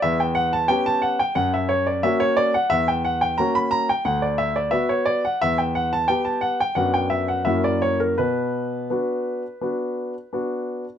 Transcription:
\new Staff \with { instrumentName = "Grand piano" } { \time 4/4 \key b \minor \tempo 4 = 88 << { e''16 g''16 fis''16 a''16 g''16 a''16 fis''16 g''16 fis''16 e''16 cis''16 d''16 e''16 cis''16 d''16 fis''16 | e''16 g''16 fis''16 g''16 ais''16 b''16 ais''16 g''16 fis''16 d''16 e''16 d''16 e''16 cis''16 d''16 fis''16 | e''16 g''16 fis''16 a''16 g''16 a''16 fis''16 g''16 fis''16 g''16 e''16 fis''16 e''16 d''16 cis''16 ais'16 | b'2. r4 | } \\ { e,4 <b cis' g'>4 fis,4 <ais cis' fis'>4 | e,4 <ais cis' fis'>4 d,4 <b fis'>4 | e,4 <b g'>4 <fis, b d' fis'>4 <fis, ais e' fis'>4 | b,4 <b d' fis'>4 <b d' fis'>4 <b d' fis'>4 | } >> }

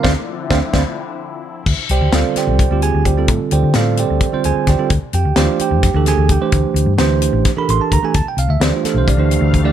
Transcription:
<<
  \new Staff \with { instrumentName = "Tine electric piano" } { \time 7/8 \key f \major \tempo 4 = 130 << { <a c' d' c'' d'' f''>8 r8 <a c' d' c'' d'' f''>8 <a c' d' c'' d'' f''>8 r4. | r8 <g' c'' d'' g''>8 <c'' d'' f''>8 <g' c'' d'' g''>4 <gis' gis''>8 <g' c'' d'' g''>8 | r8 <g' c'' d'' g''>8 <f' c'' d'' f''>8 <g' c'' d'' g''>4 <gis' gis''>8 <g' c'' d'' g''>8 | r8 <g' g''>8 <f' d'' f''>8 <g' g''>4 <gis' gis''>8 <g' g''>8 |
r2 r16 b''16 c'''16 a''16 bes''16 gis''16 | a''16 g''16 f''16 e''16 d''16 f'16 a'16 c''16 d''4 r8 | } \\ { r2. r8 | r4 <d g c' f' a'>4 r16 <d g c' f' g'>4 <d g c' f' a'>16~ | <d g c' f' a'>8. r16 <d g c' a'>4 r16 <d g c' f' c''>4 <d g c' f' a'>16 | r4 <e a d' g' c''>4 r16 <e a d' g' a'>4 <e a d' g' c''>16~ |
<e a d' g' c''>8. r16 <e a d' g' c''>4 r16 <e d' g' a' bes'>4 <e a d' g' a'>16 | r4 <e a d' g' c''>4 r16 <e a d' g' c''>4 <e a d' g' d''>16 | } >> }
  \new Staff \with { instrumentName = "Analog synth pad" } { \clef bass \time 7/8 \key f \major <d f c' e'>2.~ <d f c' e'>8 | r2. r8 | r2. r8 | r2. r8 |
r2. r8 | <d g a f''>2.~ <d g a f''>8 | }
  \new Staff \with { instrumentName = "Fingered electric bass" } { \clef bass \time 7/8 \key f \major d,16 r8. d,16 r16 d,16 r4. r16 | d,16 r16 c,16 d,16 d,16 r8 c,8 d,8 d,8. | a,16 r16 d,16 d16 a,8. d,16 r8 d,16 r16 d,16 r16 | d,16 r16 f,16 d,16 d,16 r8 f,8 d,8 d,8 r16 |
d,16 r16 d,16 g,16 d,8. a,,16 r8 a,,16 r16 d,16 r16 | d,16 r16 c,16 d,16 d,16 r8 c,8 d,8 d,8. | }
  \new DrumStaff \with { instrumentName = "Drums" } \drummode { \time 7/8 <bd sn>4 <bd sn>8 <bd sn>8 r4. | <cymc bd>8 hh8 <hh sn>8 <hh sn>8 <hh bd>8 hh8 <hh bd>8 | <hh bd>8 hh8 <hh sn>8 hh8 <hh bd>8 hh8 <hh bd sn>8 | <hh bd>8 hh8 <hh sn>8 hh8 <hh bd sn>8 <hh sn>8 <hh bd>8 |
<hh bd>8 hh8 <hh sn>8 hh8 <hh bd sn>8 hh8 <hh bd>8 | <hh bd>8 hh8 <hh sn>8 <hh sn>8 <hh bd>8 hh8 <hh bd>8 | }
>>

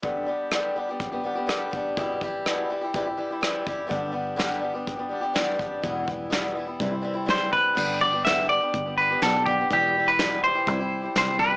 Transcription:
<<
  \new Staff \with { instrumentName = "Clean electric guitar" } { \time 4/4 \key g \major \tempo 4 = 124 r1 | r1 | r1 | r2. c''8 b'8~ |
b'8 d''8 e''8 d''4 b'8 a'8 g'8 | g'8. b'8. c''4. c''8 b'8 | }
  \new Staff \with { instrumentName = "Steel-string acoustic guitar" } { \time 4/4 \key g \major <g, d g b d' g'>8 <g b d' g'>8 <g, d g b d' g'>8 <g b d' g'>16 <g b d' g'>8 <g b d' g'>16 <g b d' g'>16 <g b d' g'>16 <g, d g b d' g'>8 <g b d' g'>8 | <e, b, e g e' g'>8 <e g e' g'>8 <e, b, e g e' g'>8 <e g e' g'>16 <e g e' g'>16 <c e g e' g'>16 <g e' g'>16 <e g e' g'>16 <g e' g'>16 <c e g e' g'>8 <e g e' g'>8 | <g, d g b d' g'>8 <g b d' g'>8 <g, d g b d' g'>8 <g b d' g'>16 <g b d' g'>8 <g b d' g'>16 <g b d' g'>16 <g b d' g'>16 <g, d g b d' g'>8 <g b d' g'>8 | <e, b, e g b e'>8 <e g b e'>8 <e, b, e g b e'>8 <e g b e'>16 <e g b e'>16 <c e g c' e'>16 <g c' e'>16 <e g c' e'>16 <g c' e'>16 <c e g c' e'>8 <e g c'>8 |
<g, d g b d' g'>8 <g b d' g'>16 <g b d' g'>16 <g, d g b d' g'>8 <g b d' g'>16 <g b d' g'>8 <g b d' g'>8 <g b d' g'>16 <g, d g b d' g'>16 <g b d' g'>16 <g b d' g'>16 <g b d' g'>16 | <e, b, e g e' g'>8 <e g e' g'>16 <e g e' g'>16 <e, b, e g e' g'>8 <e g e' g'>16 <e g e' g'>16 <c e g e' g'>16 <g e' g'>8 <g e' g'>16 <c e g e' g'>16 <g e' g'>16 <e g e' g'>16 <g e' g'>16 | }
  \new Staff \with { instrumentName = "Fingered electric bass" } { \clef bass \time 4/4 \key g \major r1 | r1 | g,,1 | e,,2 c,2 |
g,,2 g,,4 b,,4 | e,,2 c,4 c,4 | }
  \new DrumStaff \with { instrumentName = "Drums" } \drummode { \time 4/4 <hh bd>4 <hh ss>4 <hh bd>4 <hh ss>8 bd8 | <hh bd>8 bd8 <hh ss>4 <hh bd>4 <hh ss>8 bd8 | <hh bd>4 <hh sn>4 <hh bd>4 <hh sn>8 bd8 | <hh bd>8 bd8 <hh sn>4 <hh bd>4 <hh sn>8 bd8 |
<cymc bd>8 bd8 <hh sn>4 <hh bd>4 <hh sn>8 bd8 | <hh bd>4 <hh sn>4 <hh bd>4 <hh sn>8 bd8 | }
>>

